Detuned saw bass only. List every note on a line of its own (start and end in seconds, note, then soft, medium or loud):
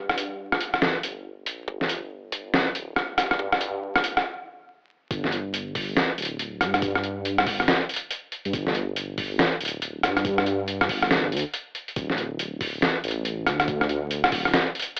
0.00 0.62 G2 loud
0.61 0.73 G1 loud
0.74 0.81 G1 loud
1.03 1.48 G1 loud
1.46 1.67 A#1 medium
1.68 2.31 G1 medium
2.32 2.44 G1 loud
2.45 2.53 G1 loud
2.75 3.19 D1 loud
3.18 4.05 G2 medium
4.04 4.16 G1 loud
4.17 4.24 G1 loud
5.11 5.74 G1 loud
5.75 5.87 G1 loud
5.88 5.96 G1 loud
6.18 6.62 D1 loud
6.61 7.48 G2 medium
7.46 7.59 G1 loud
7.60 7.67 G1 loud
8.45 8.53 G2 medium
8.54 9.17 G1 medium
9.18 9.30 G1 loud
9.31 9.39 G1 loud
9.61 10.05 D1 loud
10.04 10.91 G2 loud
10.89 11.01 G1 loud
11.02 11.34 G1 loud
11.32 11.44 D2 medium
11.96 12.60 D1 loud
12.61 12.73 D1 loud
12.74 12.81 D1 loud
13.03 13.48 A1 loud
13.46 14.34 D2 medium
14.32 14.44 D1 loud
14.45 14.53 D1 loud